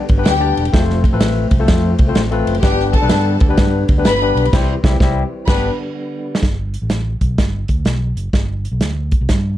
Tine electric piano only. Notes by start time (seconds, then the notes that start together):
0.17 G3 B3 D4 G4 B4
0.39 G3 B3 D4 G4 D5
0.73 A3 C4 F4 A4 C5
1.13 A3 C4 F4 A4 B4
1.59 A3 C4 F4 A4 C5
2.07 A3 C4 F4 A4 C5
2.31 A3 C4 F4 A4 B4
2.63 G3 B3 D4 G4 B4
3.02 G3 B3 D4 G4 B4
3.49 G3 B3 D4 G4 B4
3.97 G3 B3 D4 G4 B4
4.22 G3 B3 D4 G4 B4
4.54 G3 C4 E4 G4 C5
4.85 G3 C4 E4 G4
5.02 G3 C4 E4 G4
5.47 G3 B3 D4 G4 B4